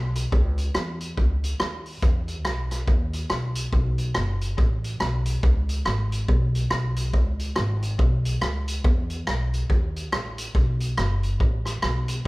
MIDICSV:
0, 0, Header, 1, 3, 480
1, 0, Start_track
1, 0, Key_signature, 4, "minor"
1, 0, Tempo, 426136
1, 363, Time_signature, 4, 2, 24, 8
1, 13827, End_track
2, 0, Start_track
2, 0, Title_t, "Upright bass"
2, 0, Program_c, 0, 32
2, 0, Note_on_c, 0, 35, 86
2, 295, Note_off_c, 0, 35, 0
2, 367, Note_on_c, 0, 37, 108
2, 773, Note_off_c, 0, 37, 0
2, 852, Note_on_c, 0, 40, 93
2, 1255, Note_off_c, 0, 40, 0
2, 1326, Note_on_c, 0, 37, 84
2, 1732, Note_off_c, 0, 37, 0
2, 1811, Note_on_c, 0, 39, 85
2, 2214, Note_off_c, 0, 39, 0
2, 2286, Note_on_c, 0, 40, 107
2, 2766, Note_off_c, 0, 40, 0
2, 2766, Note_on_c, 0, 35, 86
2, 3171, Note_off_c, 0, 35, 0
2, 3241, Note_on_c, 0, 39, 96
2, 3648, Note_off_c, 0, 39, 0
2, 3723, Note_on_c, 0, 35, 75
2, 4130, Note_off_c, 0, 35, 0
2, 4201, Note_on_c, 0, 35, 101
2, 4608, Note_off_c, 0, 35, 0
2, 4696, Note_on_c, 0, 30, 92
2, 5097, Note_off_c, 0, 30, 0
2, 5166, Note_on_c, 0, 33, 98
2, 5571, Note_off_c, 0, 33, 0
2, 5647, Note_on_c, 0, 35, 89
2, 6052, Note_off_c, 0, 35, 0
2, 6124, Note_on_c, 0, 37, 99
2, 6530, Note_off_c, 0, 37, 0
2, 6600, Note_on_c, 0, 32, 96
2, 7008, Note_off_c, 0, 32, 0
2, 7083, Note_on_c, 0, 35, 97
2, 7490, Note_off_c, 0, 35, 0
2, 7563, Note_on_c, 0, 35, 90
2, 8039, Note_off_c, 0, 35, 0
2, 8039, Note_on_c, 0, 37, 111
2, 8448, Note_off_c, 0, 37, 0
2, 8529, Note_on_c, 0, 32, 96
2, 8934, Note_off_c, 0, 32, 0
2, 9002, Note_on_c, 0, 35, 93
2, 9410, Note_off_c, 0, 35, 0
2, 9490, Note_on_c, 0, 37, 89
2, 9895, Note_off_c, 0, 37, 0
2, 9964, Note_on_c, 0, 40, 116
2, 10372, Note_off_c, 0, 40, 0
2, 10459, Note_on_c, 0, 35, 80
2, 10861, Note_off_c, 0, 35, 0
2, 10926, Note_on_c, 0, 39, 90
2, 11418, Note_off_c, 0, 39, 0
2, 11418, Note_on_c, 0, 33, 89
2, 11821, Note_off_c, 0, 33, 0
2, 11887, Note_on_c, 0, 35, 98
2, 12295, Note_off_c, 0, 35, 0
2, 12377, Note_on_c, 0, 30, 98
2, 12781, Note_off_c, 0, 30, 0
2, 12845, Note_on_c, 0, 33, 96
2, 13254, Note_off_c, 0, 33, 0
2, 13331, Note_on_c, 0, 35, 86
2, 13737, Note_off_c, 0, 35, 0
2, 13827, End_track
3, 0, Start_track
3, 0, Title_t, "Drums"
3, 173, Note_on_c, 9, 42, 96
3, 286, Note_off_c, 9, 42, 0
3, 364, Note_on_c, 9, 36, 111
3, 476, Note_off_c, 9, 36, 0
3, 650, Note_on_c, 9, 42, 64
3, 762, Note_off_c, 9, 42, 0
3, 840, Note_on_c, 9, 37, 110
3, 952, Note_off_c, 9, 37, 0
3, 1132, Note_on_c, 9, 42, 77
3, 1245, Note_off_c, 9, 42, 0
3, 1323, Note_on_c, 9, 36, 90
3, 1436, Note_off_c, 9, 36, 0
3, 1618, Note_on_c, 9, 42, 84
3, 1731, Note_off_c, 9, 42, 0
3, 1799, Note_on_c, 9, 37, 106
3, 1911, Note_off_c, 9, 37, 0
3, 2091, Note_on_c, 9, 46, 59
3, 2204, Note_off_c, 9, 46, 0
3, 2278, Note_on_c, 9, 44, 55
3, 2281, Note_on_c, 9, 36, 110
3, 2390, Note_off_c, 9, 44, 0
3, 2393, Note_off_c, 9, 36, 0
3, 2566, Note_on_c, 9, 42, 70
3, 2679, Note_off_c, 9, 42, 0
3, 2757, Note_on_c, 9, 37, 105
3, 2870, Note_off_c, 9, 37, 0
3, 3052, Note_on_c, 9, 42, 78
3, 3057, Note_on_c, 9, 37, 49
3, 3165, Note_off_c, 9, 42, 0
3, 3170, Note_off_c, 9, 37, 0
3, 3238, Note_on_c, 9, 36, 96
3, 3351, Note_off_c, 9, 36, 0
3, 3528, Note_on_c, 9, 42, 73
3, 3641, Note_off_c, 9, 42, 0
3, 3714, Note_on_c, 9, 37, 123
3, 3826, Note_off_c, 9, 37, 0
3, 4002, Note_on_c, 9, 42, 102
3, 4114, Note_off_c, 9, 42, 0
3, 4196, Note_on_c, 9, 36, 99
3, 4309, Note_off_c, 9, 36, 0
3, 4482, Note_on_c, 9, 42, 68
3, 4595, Note_off_c, 9, 42, 0
3, 4669, Note_on_c, 9, 37, 115
3, 4782, Note_off_c, 9, 37, 0
3, 4970, Note_on_c, 9, 42, 72
3, 5083, Note_off_c, 9, 42, 0
3, 5159, Note_on_c, 9, 36, 107
3, 5272, Note_off_c, 9, 36, 0
3, 5453, Note_on_c, 9, 42, 74
3, 5566, Note_off_c, 9, 42, 0
3, 5634, Note_on_c, 9, 37, 104
3, 5746, Note_off_c, 9, 37, 0
3, 5919, Note_on_c, 9, 42, 104
3, 6032, Note_off_c, 9, 42, 0
3, 6118, Note_on_c, 9, 36, 111
3, 6231, Note_off_c, 9, 36, 0
3, 6408, Note_on_c, 9, 42, 75
3, 6520, Note_off_c, 9, 42, 0
3, 6595, Note_on_c, 9, 37, 107
3, 6707, Note_off_c, 9, 37, 0
3, 6894, Note_on_c, 9, 42, 68
3, 7006, Note_off_c, 9, 42, 0
3, 7079, Note_on_c, 9, 36, 99
3, 7192, Note_off_c, 9, 36, 0
3, 7375, Note_on_c, 9, 42, 76
3, 7488, Note_off_c, 9, 42, 0
3, 7552, Note_on_c, 9, 37, 108
3, 7665, Note_off_c, 9, 37, 0
3, 7844, Note_on_c, 9, 42, 105
3, 7957, Note_off_c, 9, 42, 0
3, 8037, Note_on_c, 9, 36, 98
3, 8150, Note_off_c, 9, 36, 0
3, 8329, Note_on_c, 9, 42, 72
3, 8441, Note_off_c, 9, 42, 0
3, 8512, Note_on_c, 9, 37, 106
3, 8624, Note_off_c, 9, 37, 0
3, 8814, Note_on_c, 9, 42, 72
3, 8926, Note_off_c, 9, 42, 0
3, 9001, Note_on_c, 9, 36, 111
3, 9113, Note_off_c, 9, 36, 0
3, 9294, Note_on_c, 9, 42, 81
3, 9406, Note_off_c, 9, 42, 0
3, 9479, Note_on_c, 9, 37, 114
3, 9591, Note_off_c, 9, 37, 0
3, 9774, Note_on_c, 9, 42, 98
3, 9886, Note_off_c, 9, 42, 0
3, 9962, Note_on_c, 9, 36, 117
3, 10074, Note_off_c, 9, 36, 0
3, 10247, Note_on_c, 9, 42, 69
3, 10360, Note_off_c, 9, 42, 0
3, 10442, Note_on_c, 9, 37, 113
3, 10554, Note_off_c, 9, 37, 0
3, 10740, Note_on_c, 9, 42, 71
3, 10853, Note_off_c, 9, 42, 0
3, 10923, Note_on_c, 9, 36, 95
3, 11036, Note_off_c, 9, 36, 0
3, 11222, Note_on_c, 9, 42, 73
3, 11334, Note_off_c, 9, 42, 0
3, 11404, Note_on_c, 9, 37, 123
3, 11517, Note_off_c, 9, 37, 0
3, 11692, Note_on_c, 9, 42, 116
3, 11805, Note_off_c, 9, 42, 0
3, 11881, Note_on_c, 9, 36, 101
3, 11994, Note_off_c, 9, 36, 0
3, 12168, Note_on_c, 9, 42, 77
3, 12280, Note_off_c, 9, 42, 0
3, 12362, Note_on_c, 9, 37, 110
3, 12475, Note_off_c, 9, 37, 0
3, 12651, Note_on_c, 9, 42, 66
3, 12763, Note_off_c, 9, 42, 0
3, 12843, Note_on_c, 9, 36, 90
3, 12956, Note_off_c, 9, 36, 0
3, 13128, Note_on_c, 9, 37, 55
3, 13137, Note_on_c, 9, 42, 85
3, 13240, Note_off_c, 9, 37, 0
3, 13250, Note_off_c, 9, 42, 0
3, 13318, Note_on_c, 9, 37, 113
3, 13431, Note_off_c, 9, 37, 0
3, 13607, Note_on_c, 9, 42, 110
3, 13720, Note_off_c, 9, 42, 0
3, 13827, End_track
0, 0, End_of_file